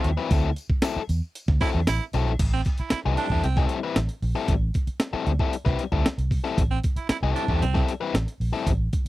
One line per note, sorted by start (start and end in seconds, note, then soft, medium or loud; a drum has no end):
0.00 0.12 E4 loud
0.04 0.15 D#2 medium
0.04 closed hi-hat medium
0.17 0.30 F#3 medium
0.17 0.30 C4 medium
0.17 0.31 E4 medium
0.17 0.31 B4 medium
0.17 snare soft
0.31 0.51 D2 loud
0.31 0.48 F#3 medium
0.31 0.48 C4 medium
0.31 0.48 E4 medium
0.31 0.48 A4 medium
0.31 kick loud
0.31 closed hi-hat medium
0.31 tambourine medium
0.56 closed hi-hat medium
0.56 tambourine medium
0.70 muted fingered electric bass stroke medium
0.70 kick medium
0.82 1.00 F#3 medium
0.82 1.00 C4 medium
0.82 1.00 E4 medium
0.82 1.00 A4 medium
0.82 snare loud
0.82 closed hi-hat loud
0.82 tambourine loud
0.96 muted fingered electric bass stroke soft
1.09 1.20 E2 medium
1.09 closed hi-hat medium
1.09 tambourine medium
1.35 closed hi-hat medium
1.35 tambourine soft
1.48 1.59 D2 loud
1.48 kick loud
1.48 snare soft
1.61 1.78 F#3 medium
1.61 1.78 C4 loud
1.61 1.70 E4 medium
1.61 1.78 E4 loud
1.61 1.78 A4 loud
1.61 kick medium
1.61 snare soft
1.61 open hi-hat medium
1.61 tambourine medium
1.75 1.85 E2 loud
1.87 1.98 A1 loud
1.87 2.04 E4 loud
1.87 snare loud
1.87 closed hi-hat loud
1.87 tambourine loud
2.13 2.27 B1 medium
2.13 2.30 F#3 medium
2.13 2.30 C4 medium
2.13 2.31 E4 medium
2.13 2.31 A4 medium
2.13 closed hi-hat medium
2.13 tambourine soft
2.27 2.37 A#1 medium
2.27 snare soft
2.39 2.60 A1 medium
2.39 kick loud
2.39 closed hi-hat medium
2.39 crash loud
2.53 2.61 C4 loud
2.65 kick medium
2.65 closed hi-hat medium
2.78 2.90 E4 medium
2.78 muted fingered electric bass stroke medium
2.78 closed hi-hat soft
2.90 3.00 E4 medium
2.90 muted fingered electric bass stroke soft
2.90 snare loud
2.90 closed hi-hat loud
3.06 3.16 C2 medium
3.06 3.26 G3 medium
3.06 3.26 C4 medium
3.06 3.26 E4 medium
3.06 3.25 A4 medium
3.17 3.39 D4 loud
3.17 closed hi-hat medium
3.30 3.41 E2 medium
3.30 3.45 G3 soft
3.30 3.45 C4 medium
3.30 3.45 E4 medium
3.30 3.44 A4 medium
3.30 kick medium
3.44 3.65 C2 medium
3.44 3.65 C4 loud
3.44 closed hi-hat medium
3.56 3.78 G3 medium
3.56 3.78 C4 medium
3.56 3.78 E4 medium
3.56 3.77 A4 medium
3.56 kick loud
3.56 snare soft
3.69 closed hi-hat medium
3.83 3.97 G3 medium
3.83 3.97 C4 medium
3.83 3.97 E4 medium
3.83 3.96 B4 medium
3.96 4.07 A1 medium
3.96 snare loud
3.96 closed hi-hat loud
4.09 closed hi-hat medium
4.22 4.33 A#1 medium
4.22 open hi-hat medium
4.35 4.53 G3 medium
4.35 4.53 C4 medium
4.35 4.52 E4 medium
4.35 4.52 A4 medium
4.35 snare soft
4.48 4.69 A1 loud
4.48 kick loud
4.48 closed hi-hat medium
4.74 kick medium
4.74 closed hi-hat medium
4.87 muted fingered electric bass stroke medium
4.87 closed hi-hat soft
5.00 snare loud
5.00 closed hi-hat loud
5.13 5.31 G3 medium
5.13 5.30 C4 medium
5.13 5.30 E4 medium
5.13 5.30 A4 medium
5.13 muted fingered electric bass stroke soft
5.27 5.37 D2 medium
5.27 closed hi-hat medium
5.39 5.54 G3 medium
5.39 5.53 C4 medium
5.39 5.53 E4 medium
5.39 5.53 A4 medium
5.39 kick medium
5.53 closed hi-hat medium
5.65 5.76 C2 medium
5.65 5.83 G3 medium
5.65 5.83 C4 medium
5.65 5.82 E4 medium
5.65 5.82 B4 medium
5.65 kick medium
5.65 snare soft
5.79 closed hi-hat medium
5.92 6.02 D2 medium
5.92 6.06 G3 medium
5.92 6.05 C4 medium
5.92 6.05 E4 medium
5.92 6.05 A4 medium
5.92 kick medium
6.06 snare loud
6.06 closed hi-hat medium
6.18 6.38 C2 medium
6.18 closed hi-hat medium
6.31 kick medium
6.31 open hi-hat medium
6.44 6.61 G3 medium
6.44 6.61 C4 medium
6.44 6.61 E4 medium
6.44 6.61 A4 medium
6.44 snare soft
6.58 6.78 A1 loud
6.58 kick loud
6.58 closed hi-hat medium
6.71 6.79 C4 medium
6.84 kick medium
6.84 closed hi-hat medium
6.96 7.07 E4 medium
6.96 muted fingered electric bass stroke medium
6.96 closed hi-hat medium
7.09 7.17 E4 medium
7.09 muted fingered electric bass stroke soft
7.09 snare loud
7.09 closed hi-hat loud
7.22 7.33 C2 medium
7.22 7.44 G3 medium
7.22 7.44 C4 medium
7.22 7.43 E4 medium
7.22 7.43 A4 medium
7.35 7.56 D4 loud
7.35 closed hi-hat medium
7.48 7.63 E2 medium
7.48 7.62 G3 medium
7.48 7.62 C4 medium
7.48 7.62 E4 medium
7.48 7.62 A4 medium
7.48 kick medium
7.62 7.82 C2 loud
7.62 7.83 C4 loud
7.62 closed hi-hat medium
7.74 7.92 G3 medium
7.74 7.92 C4 medium
7.74 7.91 E4 medium
7.74 7.91 A4 medium
7.74 kick medium
7.74 snare soft
7.88 closed hi-hat medium
8.01 8.14 G3 soft
8.01 8.14 C4 medium
8.01 8.14 E4 medium
8.01 8.14 B4 medium
8.14 8.24 A1 medium
8.14 snare loud
8.14 closed hi-hat loud
8.28 closed hi-hat medium
8.40 8.50 A#1 medium
8.40 open hi-hat medium
8.53 8.70 G3 medium
8.53 8.70 C4 medium
8.53 8.70 E4 medium
8.53 8.70 A4 medium
8.53 snare soft
8.67 8.87 A1 loud
8.67 kick loud
8.67 closed hi-hat medium
8.93 kick medium
8.93 closed hi-hat medium